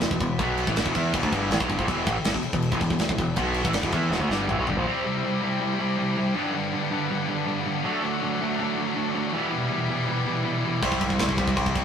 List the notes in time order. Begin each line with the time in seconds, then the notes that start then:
Already playing: E4 B4 G5
0.01 E1 E2 B2, snare, crash
0.11 E1 E2 B2, kick
0.20 E1 E2 B2, kick, crash
0.39 B1 B2 F#3 B3, kick, crash
0.58 crash
0.67 A1 A2 E3, kick
0.76 G1 G2 D3, snare, crash
0.85 E1 E2 B2, kick
0.95 E2 E3 B3 E4, kick, crash
1.14 E1 E2 B2, kick, crash
1.23 D2 D3 A3, kick
1.32 G1 G2 D3 G3, kick, crash
1.50 A1 A2 E3, snare, crash
1.60 B1 B2 F#3, kick
1.69 G1 G2 D3, kick, crash
1.78 A#1 A#2 F3, kick
1.87 E1 E2 B2 E3 A4, kick, crash
2.07 A1 A2 E3, kick, crash
2.16 muted picked electric bass stroke, muted distorted electric guitar stroke
2.24 G1 G2 D3, snare, crash
2.34 E1 E2 B2, kick
2.43 muted picked electric bass stroke, muted distorted electric guitar stroke, crash
2.53 E1 E2 B2, kick
2.62 crash
2.72 E1 E2 B2, kick
2.80 E1 E2 B2, kick, crash
2.90 E1 E2 B2, kick
2.99 E1 E2 B2, snare, crash
3.09 E1 E2 B2, kick
3.18 E1 E2 B2, kick, crash
3.36 B1 B2 F#3 B3, kick, crash
3.54 crash
3.64 A1 A2 E3, kick
3.73 G1 G2 D3, snare, crash
3.83 E1 E2 B2, kick
3.92 E2 E3 B3 E4, kick, crash
4.10 E1 E2 B2, snare
4.20 D2 D3 A3
4.29 G1 G2 D3 G3, snare
4.48 A1 A2 E3, mid tom
4.58 B1 B2 F#3
4.67 G1 G2 D3, floor tom
4.77 A#1 A#2 F3
4.85 C3 G3 C4 E4 C5 G5
4.89 C3 E4
4.94 G3
5.01 C3 G3
5.08 C3 G3
5.17 C3 G3
5.25 C3 G3
5.32 C3 G3
5.40 C3 G3 C4 E4
5.49 C3 G3
5.56 C3 G3
5.64 C3 G3
5.72 C3 G3
5.81 C3 G3
5.88 C3 G3
5.96 C3 G3
6.04 C3 G3
6.11 C3 G3
6.20 C3 G3
6.27 C3 G3
6.35 G2 D3 G3 B3 D4 B4
6.43 G2 D3
6.50 G2 D3
6.58 G2 D3
6.66 G2 D3
6.73 G2 D3
6.83 G2 D3
6.90 G2 D3 G3 B3 D4
6.98 G2 D3
7.06 G2 D3
7.14 G2 D3
7.21 G2 D3
7.29 G2 D3
7.37 G2 D3
7.45 G2 D3
7.53 G2 D3
7.60 G2 D3
7.68 G2 D3
7.76 G2 D3
7.84 D3 F#3 A3 D4 A4 F#5
7.92 D3 F#3
8.00 D3 F#3 A3
8.07 D3 F#3
8.15 D3 F#3
8.23 D3 F#3 A3
8.32 D3 F#3
8.40 D3 F#3 A3 D4
8.47 D3 F#3
8.55 D3 F#3
8.59 D3 A3
8.63 F#3
8.71 D3 F#3
8.78 D3 F#3 A3
8.87 D3 F#3
8.94 D3 F#3 A3
9.02 D3 F#3
9.10 D3 F#3
9.15 D3 F#3 A3
9.26 D3 F#3
9.33 E2 B2 E3 G3 B3 E4 B4 G5
9.42 E3 G3
9.49 E2 B2 E3 G3
9.58 E3 G3
9.65 E3 G3
9.70 E2 B2 E3 G3
9.81 E3 G3
9.88 E2 B2 E3 G3 B3 E4
9.92 E3
9.97 E3 G3
10.04 E2 B2 E3 G3
10.11 E3 G3
10.20 E3 G3
10.26 E2 B2 E3 G3
10.35 E3 G3
10.43 E2 B2 E3 G3
10.50 E3 G3
10.59 E3 G3
10.64 E2 B2 E3 G3
10.75 E3 G3
10.82 C2 C3 G3 C4 E4 C5 G5, kick, crash
10.90 C3 G3, kick
10.99 C2 C3 G3, kick, crash
11.07 C3 G3, kick
11.13 C3 G3
11.19 C2 C3, kick, snare, crash
11.24 G3
11.29 C3 G3, kick
11.37 C2 C3 G3 C4 E4, kick, crash
11.45 C3 G3, kick
11.54 C2 C3 G3, kick, crash
11.61 C3 G3
11.66 C3 G3, kick
11.76 C3 G3, kick, crash